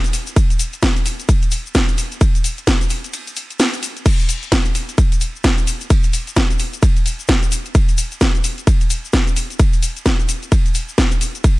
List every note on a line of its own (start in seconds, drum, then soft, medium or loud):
0.04 closed hi-hat medium
0.04 shaker soft
0.13 open hi-hat loud
0.13 shaker medium
0.27 closed hi-hat soft
0.27 shaker soft
0.36 kick loud
0.36 closed hi-hat medium
0.36 ride medium
0.36 shaker medium
0.50 closed hi-hat medium
0.50 shaker soft
0.59 open hi-hat loud
0.59 shaker loud
0.73 closed hi-hat soft
0.73 shaker soft
0.82 kick loud
0.82 snare loud
0.82 closed hi-hat medium
0.82 ride medium
0.82 shaker medium
0.96 closed hi-hat medium
0.96 shaker soft
1.06 open hi-hat loud
1.06 shaker medium
1.20 closed hi-hat soft
1.20 shaker soft
1.29 kick loud
1.29 closed hi-hat medium
1.29 ride medium
1.29 shaker medium
1.42 closed hi-hat medium
1.42 shaker soft
1.51 open hi-hat loud
1.51 shaker medium
1.66 shaker soft
1.75 kick loud
1.75 snare loud
1.75 closed hi-hat medium
1.75 ride medium
1.75 shaker medium
1.88 closed hi-hat medium
1.88 shaker soft
1.98 open hi-hat loud
1.98 shaker medium
2.12 closed hi-hat soft
2.12 shaker soft
2.21 kick loud
2.21 closed hi-hat medium
2.21 ride medium
2.21 shaker medium
2.35 closed hi-hat medium
2.35 shaker soft
2.44 open hi-hat loud
2.44 shaker medium
2.58 closed hi-hat soft
2.58 shaker soft
2.67 kick loud
2.67 snare loud
2.67 closed hi-hat medium
2.67 ride medium
2.67 shaker medium
2.81 closed hi-hat medium
2.81 shaker soft
2.89 open hi-hat loud
2.89 shaker medium
3.04 closed hi-hat soft
3.04 shaker soft
3.13 closed hi-hat medium
3.13 ride medium
3.13 shaker medium
3.27 closed hi-hat medium
3.27 shaker soft
3.36 open hi-hat loud
3.36 shaker medium
3.50 closed hi-hat soft
3.50 shaker soft
3.59 snare loud
3.59 closed hi-hat medium
3.59 ride medium
3.59 shaker medium
3.73 closed hi-hat medium
3.73 shaker soft
3.83 open hi-hat loud
3.83 shaker medium
3.97 closed hi-hat soft
3.97 shaker soft
4.06 kick loud
4.06 closed hi-hat medium
4.06 crash medium
4.06 ride medium
4.06 shaker soft
4.20 closed hi-hat medium
4.20 shaker soft
4.29 open hi-hat loud
4.29 shaker medium
4.43 closed hi-hat soft
4.43 shaker soft
4.52 kick loud
4.52 snare loud
4.52 closed hi-hat medium
4.52 ride medium
4.52 shaker soft
4.65 closed hi-hat medium
4.65 shaker soft
4.75 open hi-hat loud
4.75 shaker medium
4.89 closed hi-hat soft
4.89 shaker soft
4.98 kick loud
4.98 closed hi-hat medium
4.98 ride medium
4.98 shaker medium
5.12 closed hi-hat medium
5.12 shaker soft
5.21 open hi-hat loud
5.21 shaker medium
5.36 shaker soft
5.44 kick loud
5.44 snare loud
5.44 closed hi-hat medium
5.44 ride medium
5.44 shaker medium
5.58 closed hi-hat medium
5.58 shaker soft
5.67 open hi-hat loud
5.67 shaker medium
5.80 closed hi-hat soft
5.80 shaker soft
5.90 kick loud
5.90 closed hi-hat medium
5.90 ride medium
5.90 shaker medium
6.03 closed hi-hat medium
6.03 shaker soft
6.13 open hi-hat loud
6.13 shaker medium
6.27 closed hi-hat soft
6.27 shaker soft
6.36 kick loud
6.36 snare loud
6.36 closed hi-hat medium
6.36 ride medium
6.36 shaker soft
6.50 closed hi-hat medium
6.50 shaker soft
6.59 open hi-hat loud
6.59 shaker loud
6.73 closed hi-hat soft
6.73 shaker soft
6.82 kick loud
6.82 closed hi-hat medium
6.82 ride medium
6.82 shaker medium
6.97 closed hi-hat medium
6.97 shaker soft
7.06 open hi-hat loud
7.06 shaker loud
7.20 shaker soft
7.28 kick loud
7.28 snare loud
7.28 closed hi-hat medium
7.28 ride medium
7.28 shaker medium
7.43 closed hi-hat medium
7.43 shaker soft
7.52 open hi-hat loud
7.52 shaker loud
7.65 closed hi-hat soft
7.65 shaker soft
7.75 kick loud
7.75 closed hi-hat medium
7.75 ride medium
7.75 shaker medium
7.89 closed hi-hat medium
7.89 shaker soft
7.98 open hi-hat loud
7.98 shaker loud
8.12 closed hi-hat soft
8.12 shaker soft
8.21 kick loud
8.21 snare loud
8.21 closed hi-hat medium
8.21 ride medium
8.21 shaker medium
8.35 closed hi-hat medium
8.35 shaker soft
8.44 open hi-hat loud
8.44 shaker loud
8.58 closed hi-hat soft
8.58 shaker soft
8.67 kick loud
8.67 closed hi-hat medium
8.67 ride medium
8.67 shaker medium
8.81 closed hi-hat medium
8.81 shaker soft
8.90 open hi-hat loud
8.90 shaker loud
9.05 shaker soft
9.13 kick loud
9.13 snare loud
9.13 closed hi-hat medium
9.13 ride medium
9.13 shaker medium
9.27 closed hi-hat medium
9.27 shaker soft
9.36 open hi-hat loud
9.36 shaker medium
9.50 closed hi-hat soft
9.50 shaker soft
9.59 kick loud
9.59 closed hi-hat medium
9.59 ride medium
9.59 shaker medium
9.73 closed hi-hat medium
9.73 shaker soft
9.83 open hi-hat loud
9.83 shaker medium
9.97 closed hi-hat soft
9.97 shaker soft
10.06 kick loud
10.06 snare loud
10.06 closed hi-hat medium
10.06 ride medium
10.06 shaker medium
10.20 closed hi-hat soft
10.20 shaker soft
10.29 open hi-hat loud
10.29 shaker loud
10.43 closed hi-hat soft
10.43 shaker soft
10.52 kick loud
10.52 closed hi-hat medium
10.52 ride medium
10.52 shaker medium
10.66 closed hi-hat medium
10.66 shaker soft
10.75 open hi-hat loud
10.75 shaker loud
10.89 shaker soft
10.98 kick loud
10.98 snare loud
10.98 closed hi-hat medium
10.98 ride medium
10.98 shaker medium
11.11 closed hi-hat medium
11.11 shaker soft
11.21 open hi-hat loud
11.21 shaker medium
11.35 closed hi-hat soft
11.35 shaker soft
11.44 kick loud
11.44 closed hi-hat medium
11.44 ride medium
11.44 shaker medium